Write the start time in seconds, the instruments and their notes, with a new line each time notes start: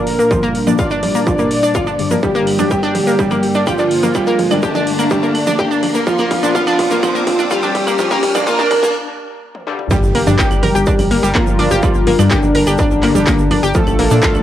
Already playing: analog synth pad A#2 F3 D4, analog polysynth A#3 A#4, riser
0.07 open hi-hat
0.19 synth pluck A#3, shaker
0.31 synth pluck F3, analog synth pad G3, kick, low conga, shaker
0.43 synth pluck A#3, shaker
0.55 open hi-hat
0.67 synth stab A#2 F3 A#3, synth pluck D4, low conga, shaker
0.78 analog polysynth D4 D5, synth pluck F4, kick, shaker
0.91 synth pluck D4, shaker
1.03 open hi-hat, low conga
1.15 synth pluck A#3, shaker
1.27 synth pluck F3, kick, shaker
1.39 synth pluck A#3, low conga, shaker
1.51 open hi-hat
1.63 synth pluck D4, shaker
1.75 synth pluck F4, kick, low conga, shaker
1.87 synth pluck D4, shaker
1.99 synth stab G2 D3 G3, open hi-hat
2.11 synth pluck A#3, low conga, shaker
2.23 analog synth pad G2 D3 A#3, analog polysynth G3 G4, synth pluck G3, kick, low conga, shaker
2.35 synth pluck A#3, shaker
2.47 open hi-hat, claves
2.59 synth stab G2 D3 G3, synth pluck D4, low conga, shaker
2.71 synth pluck G4, kick, shaker
2.83 synth pluck D4, claves, shaker
2.95 open hi-hat, low conga
3.07 synth pluck A#3, shaker
3.19 synth pluck G3, kick, shaker
3.31 synth pluck A#3, low conga, claves, shaker
3.43 open hi-hat
3.54 synth pluck D4, shaker
3.67 analog polysynth F3 F4, synth pluck G4, kick, low conga, claves, shaker
3.78 synth pluck D4, shaker
3.91 open hi-hat
4.03 synth pluck A#3, low conga, shaker
4.15 synth pluck G3, kick, claves, shaker
4.27 synth pluck A#3, shaker
4.39 open hi-hat, low conga
4.51 synth stab G2 D3 G3, synth pluck D4, claves, shaker
4.63 analog polysynth D3 D4, synth pluck G4, kick, shaker
4.75 synth pluck D4, low conga, shaker
4.87 open hi-hat
4.99 synth pluck A#3, claves, shaker
5.10 synth pluck G3, kick, low conga, shaker
5.23 synth pluck A#3, shaker
5.35 open hi-hat, claves
5.47 synth pluck D4, low conga, shaker
5.58 synth pluck G4, kick, shaker
5.71 synth pluck D4, shaker
5.83 open hi-hat, low conga, claves
5.94 synth pluck A#3, shaker
6.07 analog synth pad A#2 F3 D4, analog polysynth F3 F4, synth pluck F3, kick, shaker
6.18 synth pluck A#3, low conga, claves, shaker
6.31 kick, open hi-hat
6.43 synth stab A#2 F3 A#3, synth pluck D4, shaker
6.55 synth pluck F4, kick, low conga, shaker
6.67 synth pluck D4, claves, shaker
6.79 kick, open hi-hat
6.91 synth pluck A#3, low conga, shaker
7.03 synth pluck F3, kick, claves, shaker
7.15 synth pluck A#3, shaker
7.27 kick, open hi-hat, low conga
7.39 synth pluck D4, shaker
7.51 analog polysynth G3 G4, synth pluck F4, kick, claves, shaker
7.62 synth pluck D4, low conga, shaker
7.75 kick, open hi-hat
7.87 synth pluck A#3, claves, shaker
7.98 synth pluck F3, kick, low conga, shaker
8.10 synth pluck A#3, kick, shaker
8.23 kick, open hi-hat
8.35 synth stab A#2 F3 A#3, synth pluck D4, kick, low conga, claves, shaker
8.47 analog polysynth A#3 A#4, synth pluck F4, kick, shaker
8.59 synth pluck D4, kick, shaker
8.71 kick, open hi-hat, low conga, claves
8.83 synth pluck A#3, kick, shaker
9.55 high tom
9.67 synth stab G2 D3 G3, mid tom
9.79 mid tom
9.91 analog polysynth G3 G4, synth pluck G3, analog synth pad G3 D4 A#4, kick, impact, low conga, shaker
10.03 analog synth bass G1, shaker
10.15 analog synth bass G1, synth pluck A#3, open hi-hat, claves
10.27 analog synth bass G2, synth stab G2 D3 G3, synth pluck D4, low conga, shaker
10.39 synth pluck G4, kick, clap, shaker
10.51 analog synth bass G1, claves, shaker
10.63 analog synth bass G1, synth pluck A#4, open hi-hat, low conga
10.75 analog synth bass G1, synth pluck G4, shaker
10.86 synth pluck D4, kick, shaker
10.99 analog synth bass A1, open hi-hat, low conga, claves, shaker
11.11 analog synth bass G1, synth pluck A#3, open hi-hat
11.23 analog synth bass G1, synth pluck G3, shaker
11.35 analog polysynth F3 F4, synth pluck A#3, kick, clap, low conga, claves, shaker
11.47 analog synth bass G1, shaker
11.59 analog synth bass G1, synth pluck D4, open hi-hat
11.71 analog synth bass G1, synth pluck G4, low conga, shaker
11.83 synth pluck G3, kick, claves, shaker
11.94 analog synth bass G1, shaker
12.07 analog synth bass G1, synth pluck A#3, open hi-hat, low conga
12.19 analog synth bass G2, synth stab G2 D3 G3, synth pluck D4, claves, shaker
12.31 analog polysynth D3 D4, synth pluck G4, kick, clap, shaker
12.43 analog synth bass G1, low conga, shaker
12.55 analog synth bass G1, synth pluck A#4, open hi-hat
12.67 analog synth bass G1, synth pluck G4, claves, shaker
12.78 synth pluck D4, kick, low conga, shaker
12.91 analog synth bass A1, shaker
13.03 analog synth bass G1, synth pluck A#3, clap, open hi-hat, claves
13.15 analog synth bass G1, synth pluck G3, low conga, shaker
13.27 synth pluck A#3, kick, clap, open hi-hat, shaker
13.39 analog synth bass G1, shaker
13.51 analog synth bass G1, synth pluck D4, open hi-hat, low conga, claves
13.63 analog synth bass G1, synth pluck G4, shaker
13.74 analog synth pad A#2 F4, synth pluck F3, analog polysynth A3 A4, kick, shaker
13.87 analog synth bass A#1, low conga, claves, shaker
13.99 analog synth bass A#1, synth pluck A#3, open hi-hat
14.11 analog synth bass A#2, synth stab A#2 F3 A#3, synth pluck D4, shaker
14.22 synth pluck F4, kick, clap, low conga, shaker
14.35 analog synth bass A#1, claves, shaker